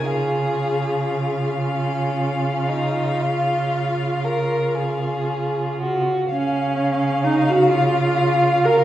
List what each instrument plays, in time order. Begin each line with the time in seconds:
0.05 cello C#3, viola F4, violin G#4 F5
1.62 violin C#4
2.69 violin D#4
3.22 violin F4
4.24 violin A#4
4.75 violin G#4
5.81 violin F#4
6.30 cello C#3, viola C#4, violin F5
7.24 viola D#4
7.50 viola F#4
7.72 viola F4
8.65 viola A#4